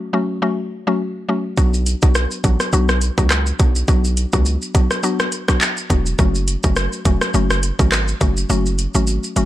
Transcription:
Already playing: synth pluck F#3 A3 C#4 F#4
0.13 synth pluck F#3 A3 C#4 F#4
0.42 synth pluck F#3 A3 C#4 F#4
0.87 synth pluck F#3 A3 C#4 F#4
1.29 synth pluck F#3 A3 C#4 F#4
1.57 808-style bass B1, synth pluck F#3 B3 D4 F#4, kick, shaker
1.74 shaker
1.86 closed hi-hat, shaker
2.02 808-style bass B1, synth pluck F#3 B3 D4 F#4, kick, shaker
2.15 cross-stick, shaker
2.31 shaker
2.44 808-style bass A1, synth pluck F#3 B3 D4 F#4, kick, closed hi-hat, shaker
2.60 cross-stick, shaker
2.73 808-style bass B1, synth pluck F#3 B3 D4 F#4, shaker
2.89 cross-stick, shaker
3.01 closed hi-hat, shaker
3.18 808-style bass C#2, synth pluck F#3 B3 D4 F#4, kick, shaker
3.30 cross-stick, clap, shaker
3.47 shaker
3.59 808-style bass B1, synth pluck F#3 B3 D4 F#4, kick, closed hi-hat, shaker
3.76 shaker
3.88 808-style bass B1, synth pluck F#3 B3 D4 F#4, kick, shaker
4.05 shaker
4.17 closed hi-hat, shaker
4.33 808-style bass C#2, synth pluck F#3 B3 D4 F#4, kick, shaker
4.46 shaker
4.62 shaker
4.75 808-style bass B1, synth pluck F#3 B3 D4 F#4, kick, closed hi-hat, shaker
4.91 cross-stick, shaker
5.03 synth pluck F#3 B3 D4 F#4, shaker
5.20 cross-stick, shaker
5.32 closed hi-hat, shaker
5.48 synth pluck F#3 B3 D4 F#4, kick, cross-stick, shaker
5.61 clap, shaker
5.77 shaker
5.90 808-style bass E1, synth pluck F#3 B3 D4 F#4, kick, closed hi-hat, shaker
6.06 shaker
6.19 808-style bass F#1, synth pluck F#3 A3 C#4 F#4, kick, shaker
6.35 shaker
6.48 closed hi-hat, shaker
6.63 808-style bass F#1, synth pluck F#3 A3 C#4 F#4, kick, shaker
6.76 cross-stick, shaker
6.93 shaker
7.05 808-style bass E1, synth pluck F#3 A3 C#4 F#4, kick, closed hi-hat, shaker
7.21 cross-stick, shaker
7.34 808-style bass F#1, synth pluck F#3 A3 C#4 F#4, shaker
7.50 cross-stick, shaker
7.63 closed hi-hat, shaker
7.79 808-style bass G#1, synth pluck F#3 A3 C#4 F#4, kick, shaker
7.92 cross-stick, clap, shaker
8.08 shaker
8.21 808-style bass F#1, synth pluck F#3 A3 C#4 F#4, kick, closed hi-hat, shaker
8.37 shaker
8.50 808-style bass F#1, synth pluck F#3 A3 C#4 F#4, shaker
8.66 shaker
8.79 closed hi-hat, shaker
8.94 808-style bass G#1, synth pluck F#3 A3 C#4 F#4, shaker
9.07 shaker
9.24 shaker
9.36 808-style bass F#1, synth pluck F#3 A3 C#4 F#4, closed hi-hat, shaker

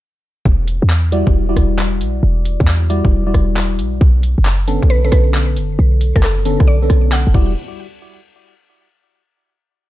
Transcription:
0.45 808-style bass E1, kick
0.68 open hi-hat
0.82 808-style bass E2
0.90 clap
1.12 fm electric piano G3 E4 F#4 D5, open hi-hat
1.27 808-style bass E1, kick
1.49 fm electric piano G3 E4 F#4 D5
1.57 808-style bass E1, kick, cross-stick, open hi-hat
1.79 clap
2.01 808-style bass B1, open hi-hat
2.23 808-style bass E1
2.45 open hi-hat
2.60 808-style bass E2, kick
2.68 clap
2.90 fm electric piano G3 E4 F#4 D5, open hi-hat
3.05 808-style bass E1, kick
3.27 fm electric piano G3 E4 F#4 D5
3.34 808-style bass E1, kick, cross-stick, open hi-hat
3.57 clap
3.79 808-style bass B1, open hi-hat
4.01 808-style bass B1, kick
4.23 open hi-hat
4.38 808-style bass F#1
4.45 clap
4.68 fm electric piano D3 B3 C#4 A4, open hi-hat
4.82 808-style bass B1, kick
4.90 synth pluck B4
5.05 fm electric piano D3 B3 C#4 A4, synth pluck B4
5.12 808-style bass B1, synth pluck B4, kick, cross-stick, open hi-hat
5.34 clap
5.56 808-style bass F#1, open hi-hat
5.79 808-style bass B1
6.01 open hi-hat
6.16 808-style bass F#1, synth pluck A4, kick
6.23 synth pluck A4, clap
6.45 fm electric piano D3 B3 C#4 A4, open hi-hat
6.60 808-style bass B1, kick, cross-stick
6.67 synth pluck D5
6.82 fm electric piano D3 B3 C#4 A4
6.90 808-style bass B1, kick, cross-stick, open hi-hat
7.12 synth pluck F#5, clap
7.27 808-style bass F#1
7.34 808-style bass E1, fm electric piano G3 E4 F#4 D5, kick, crash

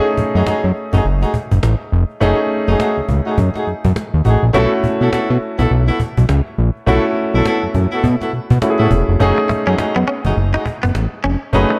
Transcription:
Already playing: grand piano A3 C#4 D#4 G#4
0.06 cajon slap
0.17 analog synth bass F#2, cajon bass
0.34 analog synth bass F#2, horn section A3 D#4 F#4 G#4, cajon slap
0.46 analog synth bass F#2, horn section A3 D#4 F#4 G#4, cajon slap
0.64 analog synth bass F#2, cajon slap
0.76 cajon slap
0.92 analog synth bass F#1, horn section A3 D#4 F#4 G#4, cajon bass
1.05 analog synth bass F#1, cajon slap
1.22 horn section A3 D#4 F#4 G#4, cajon slap
1.34 cajon bass
1.51 analog synth bass F#1, cajon bass
1.63 analog synth bass A1, cajon slap
1.81 cajon slap
1.92 analog synth bass F1, cajon slap
2.10 cajon slap
2.20 analog synth bass F#1, grand piano A3 C#4 D#4 G#4, horn section A3 D#4 F#4 G#4, cajon bass
2.39 cajon slap
2.50 cajon slap
2.67 analog synth bass F#1, horn section A3 D#4 F#4 G#4
2.79 horn section A3 D#4 F#4 G#4, cajon slap
2.97 analog synth bass C#2, cajon slap
3.09 analog synth bass C#2, cajon bass
3.26 horn section A3 D#4 F#4 G#4
3.38 analog synth bass F#2, cajon bass
3.55 horn section A3 D#4 F#4 G#4, cajon slap
3.67 analog synth bass F#2, cajon slap
3.85 analog synth bass F#2, cajon bass
3.96 cajon slap
4.14 analog synth bass D#2, cajon slap
4.25 analog synth bass A1, horn section A3 D#4 F#4 G#4, cajon bass
4.43 analog synth bass A#1, cajon slap
4.53 analog synth bass B1, grand piano A3 C#4 E4 F#4, horn section B3 E4 F#4 A4, cajon bass
4.72 cajon slap
4.84 analog synth bass B2, cajon bass
5.00 analog synth bass B2, horn section B3 E4 F#4 A4, cajon slap
5.12 analog synth bass B2, horn section B3 E4 F#4 A4, cajon slap
5.30 analog synth bass B2, cajon slap
5.42 cajon slap
5.59 analog synth bass B1, horn section B3 E4 F#4 A4, cajon bass
5.71 analog synth bass B1, cajon slap
5.88 horn section B3 E4 F#4 A4, cajon slap
6.00 cajon bass
6.17 analog synth bass B1, cajon bass
6.29 analog synth bass C#2, cajon slap
6.46 cajon slap
6.58 analog synth bass A#1, cajon slap
6.76 cajon slap
6.86 analog synth bass B1, grand piano A3 C#4 E4 F#4, horn section B3 E4 F#4 A4, cajon bass
7.05 cajon slap
7.16 cajon slap
7.34 analog synth bass B1, horn section B3 E4 F#4 A4, cajon slap
7.45 horn section B3 E4 F#4 A4, cajon slap
7.63 analog synth bass F#2, cajon slap
7.74 analog synth bass F#2, cajon bass
7.92 horn section B3 E4 F#4 A4, cajon slap
8.04 analog synth bass B2, cajon bass
8.21 horn section B3 E4 F#4 A4, cajon slap
8.33 analog synth bass B2, cajon slap
8.50 analog synth bass B2, cajon bass
8.62 grand piano A3 C#4 E4 F#4, cajon slap
8.70 grand piano G#4
8.79 analog synth bass A2, horn section B3 E4 F#4 A4, cajon slap
8.91 analog synth bass E1, cajon bass
9.08 analog synth bass F1, cajon slap
9.20 analog synth bass F#1, grand piano A3 C#4 D#4 G#4, horn section A3 D#4 F#4 G#4, cajon bass
9.38 muted clean electric guitar stroke, cajon slap
9.49 analog synth bass F#2, clean electric guitar A3, cajon bass
9.66 analog synth bass F#2, horn section A3 D#4 F#4 G#4, clean electric guitar C#4, cajon slap
9.78 analog synth bass F#2, horn section A3 D#4 F#4 G#4, muted clean electric guitar stroke, cajon slap
9.96 analog synth bass F#2, clean electric guitar B3, cajon slap
10.08 clean electric guitar C#4, cajon slap
10.24 analog synth bass F#1, horn section A3 D#4 F#4 G#4, cajon bass
10.37 analog synth bass F#1, cajon slap
10.54 horn section A3 D#4 F#4 G#4, clean electric guitar D#4, cajon slap
10.66 muted clean electric guitar stroke, cajon bass
10.83 analog synth bass F#1, clean electric guitar B3, cajon bass
10.95 analog synth bass A1, cajon slap
11.12 cajon slap
11.24 analog synth bass F1, clean electric guitar C#4, cajon slap
11.41 cajon slap
11.53 analog synth bass F#1, grand piano A3 C#4 D#4 B4, horn section A3 D#4 F#4 G#4, cajon bass
11.70 muted clean electric guitar stroke, cajon slap

